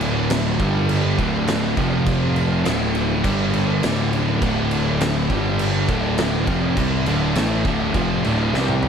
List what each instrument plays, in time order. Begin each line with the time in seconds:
Already playing: picked electric bass D1, distorted electric guitar D2 A2 D3
0.01 crash
0.30 snare, crash
0.60 picked electric bass G1, distorted electric guitar G2 D3 G3, kick, crash
0.89 crash
1.19 picked electric bass D1, distorted electric guitar D2 A2 D3, kick, crash
1.48 snare, crash
1.77 picked electric bass F1, distorted electric guitar F2 C3 F3, kick, crash
2.06 kick, crash
2.36 crash
2.65 picked electric bass D1, distorted electric guitar D2 A2 D3, snare, crash
2.95 crash
3.24 picked electric bass G1, distorted electric guitar G2 D3 G3, kick, crash
3.54 crash
3.83 picked electric bass D1, distorted electric guitar D2 A2 D3, snare, crash
4.13 crash
4.42 picked electric bass D1, distorted electric guitar D2 A2 D3, kick, crash
4.71 crash
5.01 snare, crash
5.30 picked electric bass G1, distorted electric guitar G2 D3 G3, kick, crash
5.59 crash
5.89 picked electric bass D1, distorted electric guitar D2 A2 D3, kick, crash
6.18 snare, crash
6.47 picked electric bass F1, distorted electric guitar F2 C3 F3, kick, crash
6.77 picked electric bass C2, distorted electric guitar C3 G3 C4, kick, crash
7.06 picked electric bass D1, distorted electric guitar D2 A2 D3, crash
7.35 picked electric bass A1, distorted electric guitar A2 E3 A3, snare, crash
7.65 picked electric bass D1, distorted electric guitar D2 A2 D3, kick, crash
7.94 picked electric bass F1, distorted electric guitar F2 C3 F3, kick, crash
8.24 picked electric bass D1, distorted electric guitar D2 A2 D3, crash
8.54 picked electric bass C2, distorted electric guitar C3 G3 C4, snare
8.68 high tom
8.83 mid tom